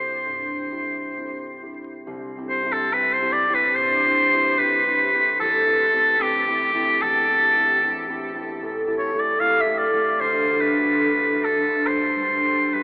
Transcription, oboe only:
0, 0, Header, 1, 2, 480
1, 0, Start_track
1, 0, Key_signature, 0, "major"
1, 0, Tempo, 903614
1, 1099, Time_signature, 4, 2, 24, 8
1, 1099, Tempo, 855920
1, 1579, Tempo, 832178
1, 2539, Tempo, 809717
1, 3979, Tempo, 794702
1, 5899, Tempo, 845070
1, 7395, End_track
2, 0, Start_track
2, 0, Title_t, "Oboe"
2, 0, Program_c, 0, 68
2, 0, Note_on_c, 0, 72, 63
2, 861, Note_off_c, 0, 72, 0
2, 1338, Note_on_c, 0, 72, 90
2, 1467, Note_on_c, 0, 69, 81
2, 1476, Note_off_c, 0, 72, 0
2, 1581, Note_on_c, 0, 71, 96
2, 1590, Note_off_c, 0, 69, 0
2, 1697, Note_on_c, 0, 72, 93
2, 1706, Note_off_c, 0, 71, 0
2, 1811, Note_on_c, 0, 74, 102
2, 1820, Note_off_c, 0, 72, 0
2, 1935, Note_on_c, 0, 71, 89
2, 1944, Note_off_c, 0, 74, 0
2, 2056, Note_on_c, 0, 72, 107
2, 2064, Note_off_c, 0, 71, 0
2, 2536, Note_on_c, 0, 71, 97
2, 2545, Note_off_c, 0, 72, 0
2, 3015, Note_off_c, 0, 71, 0
2, 3018, Note_on_c, 0, 69, 101
2, 3502, Note_on_c, 0, 67, 103
2, 3511, Note_off_c, 0, 69, 0
2, 3977, Note_on_c, 0, 69, 102
2, 3986, Note_off_c, 0, 67, 0
2, 4697, Note_off_c, 0, 69, 0
2, 5167, Note_on_c, 0, 73, 86
2, 5293, Note_on_c, 0, 74, 90
2, 5302, Note_off_c, 0, 73, 0
2, 5419, Note_on_c, 0, 77, 109
2, 5428, Note_off_c, 0, 74, 0
2, 5541, Note_on_c, 0, 76, 91
2, 5550, Note_off_c, 0, 77, 0
2, 5648, Note_on_c, 0, 74, 93
2, 5657, Note_off_c, 0, 76, 0
2, 5904, Note_on_c, 0, 72, 87
2, 5912, Note_off_c, 0, 74, 0
2, 6132, Note_on_c, 0, 71, 83
2, 6140, Note_off_c, 0, 72, 0
2, 6608, Note_on_c, 0, 69, 72
2, 6616, Note_off_c, 0, 71, 0
2, 6848, Note_on_c, 0, 72, 85
2, 6857, Note_off_c, 0, 69, 0
2, 7342, Note_on_c, 0, 71, 67
2, 7350, Note_off_c, 0, 72, 0
2, 7395, Note_off_c, 0, 71, 0
2, 7395, End_track
0, 0, End_of_file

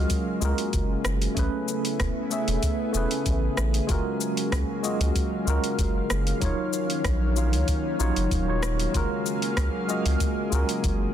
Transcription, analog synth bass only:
0, 0, Header, 1, 2, 480
1, 0, Start_track
1, 0, Key_signature, 6, "major"
1, 0, Tempo, 631579
1, 1040, Time_signature, 4, 2, 24, 8
1, 8466, End_track
2, 0, Start_track
2, 0, Title_t, "Analog synth bass"
2, 0, Program_c, 0, 38
2, 318, Note_on_c, 0, 37, 100
2, 406, Note_off_c, 0, 37, 0
2, 559, Note_on_c, 0, 30, 96
2, 729, Note_off_c, 0, 30, 0
2, 798, Note_on_c, 0, 30, 89
2, 968, Note_off_c, 0, 30, 0
2, 1039, Note_on_c, 0, 33, 92
2, 1127, Note_off_c, 0, 33, 0
2, 1519, Note_on_c, 0, 28, 84
2, 1607, Note_off_c, 0, 28, 0
2, 1885, Note_on_c, 0, 28, 86
2, 1964, Note_off_c, 0, 28, 0
2, 2239, Note_on_c, 0, 28, 96
2, 2327, Note_off_c, 0, 28, 0
2, 2479, Note_on_c, 0, 33, 100
2, 2649, Note_off_c, 0, 33, 0
2, 2719, Note_on_c, 0, 33, 93
2, 2889, Note_off_c, 0, 33, 0
2, 2958, Note_on_c, 0, 30, 86
2, 3046, Note_off_c, 0, 30, 0
2, 3438, Note_on_c, 0, 37, 90
2, 3526, Note_off_c, 0, 37, 0
2, 3805, Note_on_c, 0, 37, 88
2, 3884, Note_off_c, 0, 37, 0
2, 4158, Note_on_c, 0, 37, 95
2, 4246, Note_off_c, 0, 37, 0
2, 4398, Note_on_c, 0, 30, 98
2, 4569, Note_off_c, 0, 30, 0
2, 4641, Note_on_c, 0, 30, 93
2, 4810, Note_off_c, 0, 30, 0
2, 4878, Note_on_c, 0, 27, 83
2, 4966, Note_off_c, 0, 27, 0
2, 5357, Note_on_c, 0, 34, 91
2, 5724, Note_on_c, 0, 37, 87
2, 5735, Note_off_c, 0, 34, 0
2, 5803, Note_off_c, 0, 37, 0
2, 6081, Note_on_c, 0, 34, 101
2, 6168, Note_off_c, 0, 34, 0
2, 6208, Note_on_c, 0, 30, 85
2, 6285, Note_off_c, 0, 30, 0
2, 6317, Note_on_c, 0, 27, 84
2, 6742, Note_off_c, 0, 27, 0
2, 6797, Note_on_c, 0, 30, 89
2, 6886, Note_off_c, 0, 30, 0
2, 7276, Note_on_c, 0, 37, 86
2, 7365, Note_off_c, 0, 37, 0
2, 7644, Note_on_c, 0, 37, 84
2, 7723, Note_off_c, 0, 37, 0
2, 7997, Note_on_c, 0, 37, 100
2, 8086, Note_off_c, 0, 37, 0
2, 8237, Note_on_c, 0, 30, 102
2, 8408, Note_off_c, 0, 30, 0
2, 8466, End_track
0, 0, End_of_file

